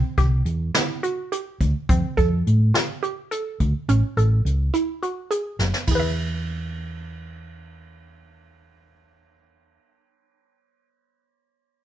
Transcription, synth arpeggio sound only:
0.18 G4
0.75 E4
1.03 F#4
1.32 G4
1.89 C4
2.17 A4
2.74 F4
3.03 G4
3.31 A4
3.89 C#4
4.17 A4
4.74 E4
5.03 F#4
5.31 G#4
5.87 E4 G#4
5.95 B4
5.99 E5

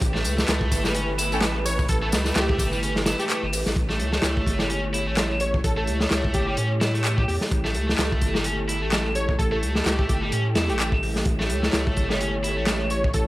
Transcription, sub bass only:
0.01 A1
0.25 C#2
0.48 C#2
0.72 G1
1.32 A1
1.89 A1
2.12 C#2
2.36 C#2
2.59 G1
3.43 G1
3.53 A1
3.66 A1
3.76 A1
4.00 C#2
4.23 C#2
4.47 G1
5.07 A1
5.64 A1
5.87 C#2
6.11 C#2
6.35 G1
6.58 A2
7.28 E2
7.51 A1
7.75 C#2
7.98 C#2
8.22 G1
8.82 A1
9.39 A1
9.63 C#2
9.86 C#2
10.09 G1
10.32 A2
10.56 E2
10.69 A1
11.26 A1
11.50 C#2
11.73 C#2
11.97 G1
12.57 A1
13.14 A1

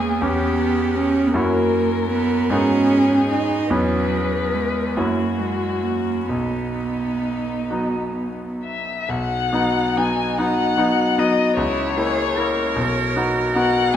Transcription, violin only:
Already playing: G#4
0.21 G4
1.33 A#4
2.50 G#4
3.70 B4
4.97 F#4
6.30 D#4
8.65 E5
9.10 F#5
9.97 G#5
10.39 F#5
11.19 D#5
11.58 C#5
13.55 F#5

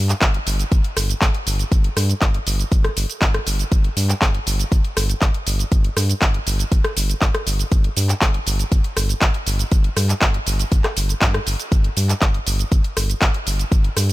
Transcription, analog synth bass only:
Already playing: G2
0.22 G1
0.47 G1
0.72 G1
0.97 G1
1.22 G1
1.47 G1
1.72 G1
1.97 G2
2.22 G1
2.47 G1
2.72 G1
2.97 G1
3.22 G1
3.47 G1
3.72 G1
3.97 G2
4.22 G1
4.47 G1
4.72 G1
4.97 G1
5.22 G1
5.47 G1
5.72 G1
5.97 G2
6.22 G1
6.47 G1
6.72 G1
6.97 G1
7.22 G1
7.47 G1
7.72 G1
7.97 G2
8.22 G1
8.47 G1
8.72 G1
8.97 G1
9.22 G1
9.47 G1
9.72 G1
9.97 G2
10.22 G1
10.47 G1
10.72 G1
10.97 G1
11.22 G2
11.47 G1
11.72 G1
11.97 G2
12.22 G1
12.47 G1
12.72 G1
12.97 G1
13.22 G1
13.47 G1
13.72 G1
13.97 G2

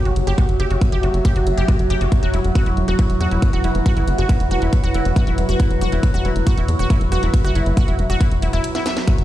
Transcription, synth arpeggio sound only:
0.05 F#4
0.27 G4
0.38 F#4
0.60 G4
0.71 F#4
0.92 G4
1.03 F#4
1.25 G4
1.36 F#4
1.58 G4
1.68 F#4
1.90 G4
2.01 F#4
2.23 F#4
2.34 E4
2.55 F#4
2.66 E4
2.88 F#4
2.99 E4
3.21 F#4
3.31 E4
3.53 F#4
3.64 E4
3.86 F#4
3.97 E4
4.18 F#4
4.29 E4
4.51 F#4
4.62 E4
4.84 F#4
4.95 E4
5.16 F#4
5.27 E4
5.49 F#4
5.60 E4
5.81 F#4
5.92 E4
6.14 F#4
6.25 E4
6.47 F#4
6.58 E4
6.79 F#4
6.90 E4
7.12 F#4
7.23 E4
7.44 F#4
7.55 E4
7.77 F#4
7.88 E4
8.10 F#4
8.21 E4
8.42 E4
8.53 E4
8.75 E4
8.86 E5
9.08 F#4

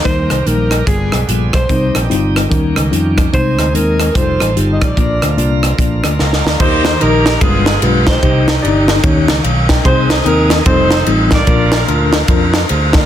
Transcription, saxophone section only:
6.61 D#4 G4 C5
7.01 D#4 G4 A#4
7.41 B3 F4 G#4
8.07 D#4 G4 C5
9.85 D#4 G#4 C5
10.11 C5
10.25 D#4 A#4
10.66 D#4 A4 C5
11.32 F4 A#4 D5

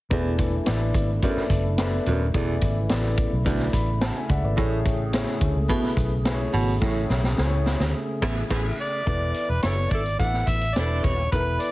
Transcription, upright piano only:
0.10 E3 B3 E4 A4 D5
0.66 B3 E4 A4 D5
1.22 B3 E4 G#4 D5
1.29 A4
1.78 B3 E4 A4 D5
2.34 E3 B3 E4 A4 D5
2.89 B3 E4 A4 D5
3.45 B3 E4 A4 D5
3.73 B5
4.01 F#5 A5
4.16 E5 G#5
4.29 D5 E5 F#5
4.44 B4 D5
4.57 A2 A3 E4 G#4 C#5
5.12 A3 E4 G#4 C#5
5.69 A3 E4 G#4 B4
6.25 A3 E4 G#4 B4
6.32 C#5
6.81 A2 A3 E4 G#4 C#5
7.38 A3 E4 G#4 C5
7.46 C#5
8.22 A3 E4 G#4 E5
8.50 A3 E4 G#4 E5
9.06 E3 B3 E4 A4 D5
9.62 B3 E4 A4 D5
10.18 B3 E4 A4 E5
10.76 B3 E4 A4 B4
11.33 E3 B3 E4 A4 A#4
11.40 B4

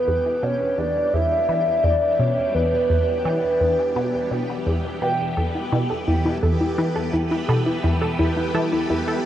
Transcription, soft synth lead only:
Already playing: B4
0.43 C#5
0.78 D5
1.14 E5
1.84 D5
2.20 C#5
2.55 B4
5.02 G5

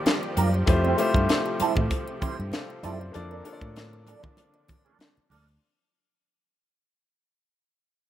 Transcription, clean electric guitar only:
0.05 muted clean electric guitar stroke
0.36 G3 D4 F4 A#4
0.54 muted clean electric guitar stroke
0.67 muted clean electric guitar stroke
0.84 G3 C4 E4 C5
0.98 muted clean electric guitar stroke
1.15 muted clean electric guitar stroke
1.28 muted clean electric guitar stroke
1.46 muted clean electric guitar stroke
1.60 G3 C4 E4 A4
1.91 muted clean electric guitar stroke
2.08 muted clean electric guitar stroke
2.21 G3 C4 E4 C5
2.39 muted clean electric guitar stroke
2.53 muted clean electric guitar stroke
2.70 muted clean electric guitar stroke
2.83 G3 C4 E4 A4
3.00 muted clean electric guitar stroke
3.14 muted clean electric guitar stroke
3.31 F3 A#3 D4 A#4
3.45 muted clean electric guitar stroke
3.62 muted clean electric guitar stroke
3.77 muted clean electric guitar stroke
3.93 muted clean electric guitar stroke
4.06 F3 A#3 D4 A4
4.23 muted clean electric guitar stroke
4.38 muted clean electric guitar stroke
4.54 muted clean electric guitar stroke
4.85 F3 A#3 D4 A4
4.99 muted clean electric guitar stroke
5.16 muted clean electric guitar stroke
5.29 F3 A#3 D4 A4
5.47 muted clean electric guitar stroke

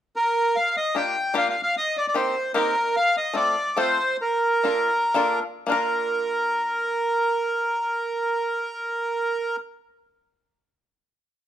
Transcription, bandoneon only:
0.16 A#4
0.56 F5
0.77 D#5
0.97 G5
1.37 F5
1.50 F5
1.63 F5
1.77 D#5
1.97 D5
2.08 D5
2.16 C5
2.55 A#4
2.96 F5
3.17 D#5
3.36 D5
3.78 C5
4.21 A#4
5.70 A#4

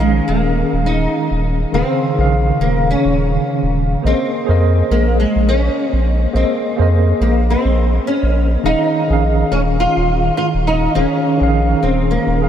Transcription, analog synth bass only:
Already playing: A#1
0.28 D#1
0.73 D#1
1.31 D#1
1.73 D#1
2.18 A#1
2.60 D#1
3.05 D#1
3.62 D#1
4.04 A#1
4.49 F2
4.91 A#1
5.35 A#1
5.93 A#1
6.34 A#1
6.79 F2
7.20 A#1
7.65 A#1
8.23 A#1
8.64 D#1
9.10 A#1
9.51 D#1
9.96 D#1
10.54 D#1
10.96 D#1
11.41 A#1
11.83 D#1
12.27 D#1

